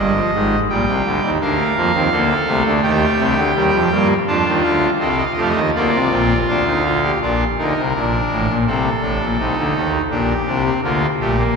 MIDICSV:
0, 0, Header, 1, 2, 480
1, 0, Start_track
1, 0, Tempo, 714286
1, 940, Time_signature, 4, 2, 24, 8
1, 2381, Tempo, 729927
1, 7655, End_track
2, 0, Start_track
2, 0, Title_t, "Pipe organ"
2, 0, Program_c, 0, 19
2, 0, Note_on_c, 0, 31, 61
2, 0, Note_on_c, 0, 43, 69
2, 0, Note_on_c, 0, 55, 81
2, 0, Note_on_c, 0, 75, 69
2, 85, Note_off_c, 0, 55, 0
2, 105, Note_on_c, 0, 53, 67
2, 132, Note_off_c, 0, 43, 0
2, 133, Note_off_c, 0, 31, 0
2, 207, Note_off_c, 0, 53, 0
2, 225, Note_on_c, 0, 32, 67
2, 225, Note_on_c, 0, 44, 63
2, 226, Note_on_c, 0, 51, 63
2, 373, Note_off_c, 0, 32, 0
2, 373, Note_off_c, 0, 44, 0
2, 374, Note_off_c, 0, 51, 0
2, 397, Note_off_c, 0, 75, 0
2, 467, Note_on_c, 0, 34, 67
2, 467, Note_on_c, 0, 55, 79
2, 467, Note_on_c, 0, 79, 71
2, 468, Note_on_c, 0, 46, 56
2, 568, Note_off_c, 0, 34, 0
2, 569, Note_off_c, 0, 46, 0
2, 581, Note_on_c, 0, 36, 65
2, 582, Note_on_c, 0, 48, 66
2, 684, Note_off_c, 0, 36, 0
2, 685, Note_off_c, 0, 48, 0
2, 700, Note_on_c, 0, 38, 73
2, 705, Note_on_c, 0, 50, 68
2, 803, Note_off_c, 0, 38, 0
2, 806, Note_off_c, 0, 50, 0
2, 824, Note_on_c, 0, 39, 60
2, 826, Note_on_c, 0, 51, 59
2, 876, Note_off_c, 0, 55, 0
2, 876, Note_off_c, 0, 79, 0
2, 925, Note_off_c, 0, 39, 0
2, 926, Note_off_c, 0, 51, 0
2, 945, Note_on_c, 0, 38, 59
2, 946, Note_on_c, 0, 62, 67
2, 946, Note_on_c, 0, 70, 71
2, 947, Note_on_c, 0, 50, 67
2, 947, Note_on_c, 0, 77, 67
2, 1046, Note_off_c, 0, 62, 0
2, 1063, Note_on_c, 0, 57, 63
2, 1092, Note_off_c, 0, 38, 0
2, 1093, Note_off_c, 0, 50, 0
2, 1164, Note_off_c, 0, 57, 0
2, 1183, Note_on_c, 0, 53, 70
2, 1184, Note_on_c, 0, 41, 71
2, 1185, Note_on_c, 0, 58, 54
2, 1284, Note_off_c, 0, 53, 0
2, 1285, Note_off_c, 0, 41, 0
2, 1285, Note_off_c, 0, 58, 0
2, 1300, Note_on_c, 0, 60, 66
2, 1302, Note_on_c, 0, 39, 93
2, 1303, Note_on_c, 0, 51, 80
2, 1355, Note_off_c, 0, 70, 0
2, 1403, Note_off_c, 0, 60, 0
2, 1404, Note_off_c, 0, 39, 0
2, 1404, Note_off_c, 0, 51, 0
2, 1418, Note_on_c, 0, 50, 78
2, 1419, Note_on_c, 0, 69, 64
2, 1421, Note_on_c, 0, 38, 79
2, 1421, Note_on_c, 0, 58, 70
2, 1566, Note_off_c, 0, 50, 0
2, 1569, Note_off_c, 0, 38, 0
2, 1569, Note_off_c, 0, 58, 0
2, 1660, Note_on_c, 0, 57, 87
2, 1661, Note_on_c, 0, 36, 95
2, 1661, Note_on_c, 0, 48, 101
2, 1763, Note_off_c, 0, 36, 0
2, 1763, Note_off_c, 0, 48, 0
2, 1768, Note_off_c, 0, 77, 0
2, 1778, Note_on_c, 0, 38, 90
2, 1781, Note_on_c, 0, 50, 88
2, 1831, Note_off_c, 0, 69, 0
2, 1882, Note_off_c, 0, 38, 0
2, 1883, Note_off_c, 0, 50, 0
2, 1899, Note_on_c, 0, 67, 76
2, 1899, Note_on_c, 0, 79, 70
2, 1900, Note_on_c, 0, 39, 95
2, 1900, Note_on_c, 0, 51, 94
2, 2049, Note_off_c, 0, 39, 0
2, 2049, Note_off_c, 0, 51, 0
2, 2139, Note_on_c, 0, 48, 78
2, 2144, Note_on_c, 0, 36, 91
2, 2243, Note_off_c, 0, 48, 0
2, 2246, Note_off_c, 0, 36, 0
2, 2256, Note_on_c, 0, 38, 93
2, 2258, Note_on_c, 0, 50, 89
2, 2281, Note_off_c, 0, 57, 0
2, 2362, Note_off_c, 0, 38, 0
2, 2363, Note_off_c, 0, 50, 0
2, 2384, Note_on_c, 0, 51, 83
2, 2386, Note_on_c, 0, 39, 82
2, 2386, Note_on_c, 0, 55, 68
2, 2486, Note_off_c, 0, 51, 0
2, 2487, Note_off_c, 0, 39, 0
2, 2500, Note_on_c, 0, 41, 85
2, 2502, Note_on_c, 0, 53, 82
2, 2533, Note_off_c, 0, 55, 0
2, 2604, Note_off_c, 0, 41, 0
2, 2604, Note_off_c, 0, 53, 0
2, 2622, Note_on_c, 0, 43, 85
2, 2622, Note_on_c, 0, 58, 72
2, 2623, Note_on_c, 0, 55, 83
2, 2728, Note_off_c, 0, 67, 0
2, 2728, Note_off_c, 0, 79, 0
2, 2770, Note_off_c, 0, 43, 0
2, 2771, Note_off_c, 0, 55, 0
2, 2771, Note_off_c, 0, 58, 0
2, 2859, Note_on_c, 0, 62, 76
2, 2860, Note_on_c, 0, 65, 77
2, 2861, Note_on_c, 0, 41, 84
2, 2861, Note_on_c, 0, 81, 83
2, 2862, Note_on_c, 0, 53, 87
2, 2965, Note_off_c, 0, 41, 0
2, 2965, Note_off_c, 0, 53, 0
2, 2984, Note_on_c, 0, 39, 89
2, 2987, Note_on_c, 0, 51, 89
2, 3010, Note_off_c, 0, 81, 0
2, 3087, Note_off_c, 0, 39, 0
2, 3088, Note_off_c, 0, 51, 0
2, 3096, Note_on_c, 0, 77, 62
2, 3099, Note_on_c, 0, 38, 70
2, 3100, Note_on_c, 0, 50, 69
2, 3246, Note_off_c, 0, 77, 0
2, 3248, Note_off_c, 0, 38, 0
2, 3249, Note_off_c, 0, 50, 0
2, 3273, Note_off_c, 0, 62, 0
2, 3273, Note_off_c, 0, 65, 0
2, 3337, Note_on_c, 0, 36, 85
2, 3337, Note_on_c, 0, 60, 61
2, 3337, Note_on_c, 0, 75, 57
2, 3339, Note_on_c, 0, 48, 80
2, 3340, Note_on_c, 0, 69, 68
2, 3392, Note_off_c, 0, 75, 0
2, 3392, Note_on_c, 0, 77, 56
2, 3446, Note_off_c, 0, 77, 0
2, 3454, Note_on_c, 0, 75, 57
2, 3487, Note_off_c, 0, 36, 0
2, 3487, Note_off_c, 0, 60, 0
2, 3488, Note_off_c, 0, 48, 0
2, 3489, Note_off_c, 0, 69, 0
2, 3503, Note_off_c, 0, 75, 0
2, 3504, Note_on_c, 0, 77, 56
2, 3551, Note_on_c, 0, 75, 58
2, 3554, Note_off_c, 0, 77, 0
2, 3576, Note_on_c, 0, 53, 100
2, 3579, Note_on_c, 0, 67, 78
2, 3581, Note_on_c, 0, 41, 97
2, 3581, Note_on_c, 0, 57, 77
2, 3605, Note_off_c, 0, 75, 0
2, 3611, Note_on_c, 0, 77, 68
2, 3658, Note_on_c, 0, 75, 82
2, 3661, Note_off_c, 0, 77, 0
2, 3681, Note_off_c, 0, 53, 0
2, 3685, Note_off_c, 0, 41, 0
2, 3704, Note_on_c, 0, 51, 93
2, 3707, Note_on_c, 0, 39, 86
2, 3729, Note_off_c, 0, 67, 0
2, 3730, Note_off_c, 0, 57, 0
2, 3799, Note_off_c, 0, 75, 0
2, 3807, Note_off_c, 0, 51, 0
2, 3808, Note_off_c, 0, 39, 0
2, 3831, Note_on_c, 0, 38, 81
2, 3832, Note_on_c, 0, 50, 90
2, 3832, Note_on_c, 0, 58, 66
2, 3832, Note_on_c, 0, 65, 81
2, 3833, Note_on_c, 0, 74, 77
2, 3931, Note_off_c, 0, 38, 0
2, 3932, Note_off_c, 0, 50, 0
2, 3948, Note_on_c, 0, 36, 73
2, 3949, Note_on_c, 0, 48, 80
2, 3979, Note_off_c, 0, 58, 0
2, 4050, Note_off_c, 0, 36, 0
2, 4051, Note_off_c, 0, 48, 0
2, 4063, Note_on_c, 0, 60, 62
2, 4064, Note_on_c, 0, 34, 75
2, 4066, Note_on_c, 0, 46, 75
2, 4214, Note_off_c, 0, 34, 0
2, 4214, Note_off_c, 0, 60, 0
2, 4216, Note_off_c, 0, 46, 0
2, 4245, Note_off_c, 0, 74, 0
2, 4313, Note_on_c, 0, 77, 66
2, 4315, Note_on_c, 0, 50, 85
2, 4315, Note_on_c, 0, 62, 67
2, 4316, Note_on_c, 0, 38, 85
2, 4415, Note_off_c, 0, 62, 0
2, 4428, Note_on_c, 0, 63, 62
2, 4532, Note_off_c, 0, 63, 0
2, 4540, Note_off_c, 0, 65, 0
2, 4553, Note_on_c, 0, 65, 65
2, 4655, Note_off_c, 0, 65, 0
2, 4677, Note_on_c, 0, 67, 65
2, 4727, Note_off_c, 0, 50, 0
2, 4727, Note_off_c, 0, 77, 0
2, 4728, Note_off_c, 0, 38, 0
2, 4778, Note_off_c, 0, 67, 0
2, 4795, Note_on_c, 0, 34, 72
2, 4795, Note_on_c, 0, 62, 61
2, 4797, Note_on_c, 0, 46, 67
2, 4797, Note_on_c, 0, 65, 63
2, 4943, Note_off_c, 0, 34, 0
2, 4943, Note_off_c, 0, 62, 0
2, 4945, Note_off_c, 0, 46, 0
2, 4945, Note_off_c, 0, 65, 0
2, 5034, Note_on_c, 0, 50, 55
2, 5036, Note_on_c, 0, 38, 53
2, 5037, Note_on_c, 0, 63, 51
2, 5038, Note_on_c, 0, 70, 52
2, 5137, Note_off_c, 0, 50, 0
2, 5138, Note_off_c, 0, 38, 0
2, 5160, Note_on_c, 0, 36, 64
2, 5165, Note_on_c, 0, 48, 72
2, 5185, Note_off_c, 0, 63, 0
2, 5261, Note_off_c, 0, 36, 0
2, 5263, Note_off_c, 0, 48, 0
2, 5278, Note_on_c, 0, 62, 53
2, 5279, Note_on_c, 0, 34, 57
2, 5280, Note_on_c, 0, 46, 58
2, 5427, Note_off_c, 0, 34, 0
2, 5428, Note_off_c, 0, 46, 0
2, 5516, Note_on_c, 0, 33, 74
2, 5516, Note_on_c, 0, 45, 78
2, 5619, Note_off_c, 0, 33, 0
2, 5619, Note_off_c, 0, 45, 0
2, 5630, Note_on_c, 0, 46, 65
2, 5632, Note_on_c, 0, 34, 67
2, 5656, Note_off_c, 0, 70, 0
2, 5690, Note_off_c, 0, 62, 0
2, 5735, Note_off_c, 0, 46, 0
2, 5736, Note_off_c, 0, 34, 0
2, 5746, Note_on_c, 0, 36, 70
2, 5748, Note_on_c, 0, 60, 60
2, 5749, Note_on_c, 0, 48, 69
2, 5749, Note_on_c, 0, 69, 58
2, 5896, Note_off_c, 0, 36, 0
2, 5897, Note_off_c, 0, 60, 0
2, 5898, Note_off_c, 0, 48, 0
2, 5982, Note_on_c, 0, 45, 59
2, 5984, Note_on_c, 0, 62, 51
2, 5985, Note_on_c, 0, 33, 65
2, 6088, Note_off_c, 0, 45, 0
2, 6090, Note_off_c, 0, 33, 0
2, 6106, Note_on_c, 0, 46, 69
2, 6108, Note_on_c, 0, 34, 66
2, 6134, Note_off_c, 0, 62, 0
2, 6210, Note_off_c, 0, 46, 0
2, 6211, Note_off_c, 0, 34, 0
2, 6222, Note_on_c, 0, 48, 56
2, 6222, Note_on_c, 0, 63, 52
2, 6223, Note_on_c, 0, 36, 61
2, 6327, Note_off_c, 0, 48, 0
2, 6328, Note_off_c, 0, 36, 0
2, 6346, Note_on_c, 0, 50, 65
2, 6347, Note_on_c, 0, 38, 67
2, 6449, Note_off_c, 0, 38, 0
2, 6449, Note_off_c, 0, 50, 0
2, 6465, Note_on_c, 0, 51, 65
2, 6466, Note_on_c, 0, 39, 69
2, 6569, Note_off_c, 0, 69, 0
2, 6613, Note_off_c, 0, 51, 0
2, 6614, Note_off_c, 0, 39, 0
2, 6634, Note_off_c, 0, 63, 0
2, 6695, Note_on_c, 0, 34, 62
2, 6696, Note_on_c, 0, 67, 62
2, 6697, Note_on_c, 0, 46, 62
2, 6698, Note_on_c, 0, 62, 66
2, 6846, Note_off_c, 0, 34, 0
2, 6847, Note_off_c, 0, 46, 0
2, 6848, Note_off_c, 0, 62, 0
2, 6931, Note_on_c, 0, 48, 52
2, 6932, Note_on_c, 0, 62, 60
2, 6933, Note_on_c, 0, 36, 51
2, 7040, Note_off_c, 0, 62, 0
2, 7045, Note_on_c, 0, 60, 65
2, 7083, Note_off_c, 0, 48, 0
2, 7084, Note_off_c, 0, 36, 0
2, 7110, Note_off_c, 0, 67, 0
2, 7155, Note_off_c, 0, 60, 0
2, 7170, Note_on_c, 0, 58, 68
2, 7172, Note_on_c, 0, 38, 56
2, 7174, Note_on_c, 0, 50, 52
2, 7176, Note_on_c, 0, 65, 57
2, 7322, Note_off_c, 0, 58, 0
2, 7323, Note_off_c, 0, 38, 0
2, 7324, Note_off_c, 0, 50, 0
2, 7325, Note_off_c, 0, 65, 0
2, 7415, Note_on_c, 0, 34, 69
2, 7416, Note_on_c, 0, 57, 86
2, 7416, Note_on_c, 0, 67, 70
2, 7417, Note_on_c, 0, 46, 71
2, 7520, Note_off_c, 0, 57, 0
2, 7535, Note_on_c, 0, 58, 74
2, 7565, Note_off_c, 0, 34, 0
2, 7566, Note_off_c, 0, 46, 0
2, 7566, Note_off_c, 0, 67, 0
2, 7640, Note_off_c, 0, 58, 0
2, 7655, End_track
0, 0, End_of_file